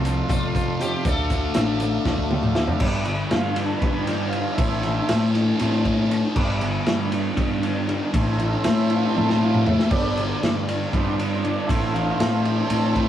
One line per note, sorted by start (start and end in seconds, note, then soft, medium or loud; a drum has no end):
0.00 0.20 C2 medium
0.00 0.29 F2 medium
0.00 0.25 A4 medium
0.00 2.78 A4 medium
0.00 1.02 C5 medium
0.00 1.03 F5 medium
0.00 1.02 C6 medium
0.04 0.30 C3 medium
0.04 0.32 F3 medium
0.04 closed hi-hat medium
0.29 0.91 F2 medium
0.29 0.78 F2 medium
0.29 0.81 C3 medium
0.29 0.81 F4 medium
0.29 kick loud
0.29 closed hi-hat loud
0.33 0.82 F3 medium
0.55 kick medium
0.55 closed hi-hat medium
0.80 1.04 F2 medium
0.80 1.05 C3 loud
0.80 1.06 F3 loud
0.80 1.04 G4 medium
0.80 closed hi-hat medium
1.04 1.46 D2 loud
1.04 1.54 D3 medium
1.04 1.57 A3 medium
1.04 2.55 A4 medium
1.04 2.81 E5 medium
1.04 2.80 F5 medium
1.04 2.80 D6 medium
1.04 kick loud
1.04 closed hi-hat loud
1.09 1.58 D4 loud
1.30 kick medium
1.30 snare soft
1.30 closed hi-hat medium
1.54 1.97 A1 medium
1.54 2.04 D3 medium
1.54 1.83 A3 medium
1.54 snare loud
1.54 closed hi-hat loud
1.59 1.80 D4 medium
1.80 2.07 D4 medium
1.80 closed hi-hat medium
1.85 2.05 A3 medium
2.05 2.67 D2 medium
2.05 2.55 D3 medium
2.05 2.56 A3 medium
2.05 2.58 D4 medium
2.05 kick loud
2.05 snare medium
2.18 kick medium
2.31 mid tom medium
2.43 mid tom medium
2.55 2.80 D3 medium
2.55 2.81 A3 loud
2.55 2.82 D4 loud
2.55 snare loud
2.68 floor tom medium
2.80 3.22 G1 loud
2.80 4.08 G2 medium
2.80 3.16 D3 medium
2.80 3.16 G3 medium
2.80 3.16 B3 medium
2.80 kick loud
2.80 crash loud
3.05 4.33 D3 medium
3.05 ride medium
3.31 3.74 G2 medium
3.31 4.32 G3 medium
3.31 3.59 F4 medium
3.31 snare loud
3.31 ride loud
3.53 4.06 D4 medium
3.53 3.69 G4 medium
3.53 snare soft
3.53 ride medium
3.66 3.80 A4 medium
3.78 4.07 B4 loud
3.82 4.44 G2 medium
3.82 4.59 B3 medium
3.82 kick loud
3.82 snare soft
3.82 ride loud
4.02 4.29 G4 loud
4.07 4.59 D4 medium
4.07 snare soft
4.07 ride medium
4.29 4.59 G3 medium
4.29 4.55 F4 medium
4.29 ride medium
4.54 5.30 E3 medium
4.54 5.30 A3 soft
4.54 5.28 E4 medium
4.58 5.00 A1 loud
4.58 5.86 A2 medium
4.58 5.31 C4 medium
4.58 kick loud
4.58 ride loud
4.83 6.11 E3 medium
4.83 snare soft
4.83 ride medium
5.09 5.51 A2 medium
5.09 6.11 A3 medium
5.09 snare loud
5.09 ride loud
5.35 5.84 E4 medium
5.35 snare soft
5.35 ride medium
5.59 6.22 A2 medium
5.59 5.83 E3 soft
5.59 5.83 A3 soft
5.59 6.36 C4 medium
5.59 5.83 C4 medium
5.59 snare soft
5.59 ride medium
5.85 6.36 E4 medium
5.85 kick medium
5.85 ride medium
6.11 6.37 A3 medium
6.11 ride medium
6.35 6.77 G1 loud
6.35 7.63 G2 medium
6.35 6.69 D3 medium
6.35 6.70 G3 soft
6.35 6.70 B3 medium
6.35 kick loud
6.35 crash loud
6.61 7.88 D3 medium
6.61 ride medium
6.86 7.28 G2 medium
6.86 7.87 G3 medium
6.86 snare loud
6.86 ride loud
7.11 7.61 D4 medium
7.11 snare soft
7.11 ride medium
7.35 7.99 G2 medium
7.35 8.13 B3 medium
7.35 kick loud
7.35 ride loud
7.62 8.13 D4 medium
7.62 ride medium
7.88 8.14 G3 medium
7.88 ride medium
8.14 8.55 A1 loud
8.14 9.41 A2 medium
8.14 9.41 E3 medium
8.14 9.42 A3 medium
8.14 9.42 C4 medium
8.14 kick loud
8.14 ride loud
8.38 9.65 E3 medium
8.38 ride medium
8.64 9.06 A2 medium
8.64 9.66 A3 medium
8.64 snare loud
8.64 ride loud
8.70 8.93 E4 medium
8.90 9.40 E4 medium
8.90 ride medium
8.95 9.05 F4 medium
9.06 9.17 G4 medium
9.15 9.78 A2 medium
9.15 9.91 C4 medium
9.15 9.40 A4 loud
9.15 high tom medium
9.30 snare medium
9.41 9.64 E3 medium
9.41 9.65 A3 soft
9.41 9.65 C4 medium
9.41 9.92 E4 medium
9.41 9.68 F4 medium
9.54 mid tom medium
9.66 9.92 A3 medium
9.66 9.92 E4 medium
9.66 floor tom loud
9.79 snare medium
9.90 10.32 G1 loud
9.90 11.19 G2 medium
9.90 10.24 D3 medium
9.90 10.25 G3 soft
9.90 10.25 B3 medium
9.90 10.63 D4 medium
9.90 kick loud
9.90 crash loud
10.17 11.44 D3 medium
10.17 ride medium
10.42 10.84 G2 medium
10.42 11.44 G3 medium
10.42 snare loud
10.42 ride medium
10.68 11.18 D4 medium
10.68 ride medium
10.92 11.55 G2 medium
10.92 11.15 D3 medium
10.92 11.15 G3 soft
10.92 11.16 B3 medium
10.92 11.69 B3 medium
10.92 11.18 C4 medium
10.92 kick loud
10.92 ride medium
11.19 11.31 B3 medium
11.19 11.69 D4 medium
11.19 ride medium
11.33 11.44 C4 medium
11.43 11.70 G3 medium
11.43 11.69 D4 medium
11.43 ride medium
11.67 12.10 A1 loud
11.67 12.96 A2 medium
11.67 13.09 A3 medium
11.67 13.09 C4 medium
11.67 11.95 E4 medium
11.67 kick loud
11.67 ride loud
11.94 13.09 E3 medium
11.94 12.46 F4 medium
11.94 ride medium
12.19 12.61 A2 medium
12.19 13.09 A3 medium
12.19 snare loud
12.19 ride loud
12.42 12.95 E4 medium
12.42 12.67 G4 medium
12.42 ride medium
12.69 13.09 A2 medium
12.69 13.09 C4 medium
12.69 12.94 A4 medium
12.69 ride loud
12.94 13.09 E4 medium
12.94 13.09 B4 loud
12.94 kick medium
12.94 ride medium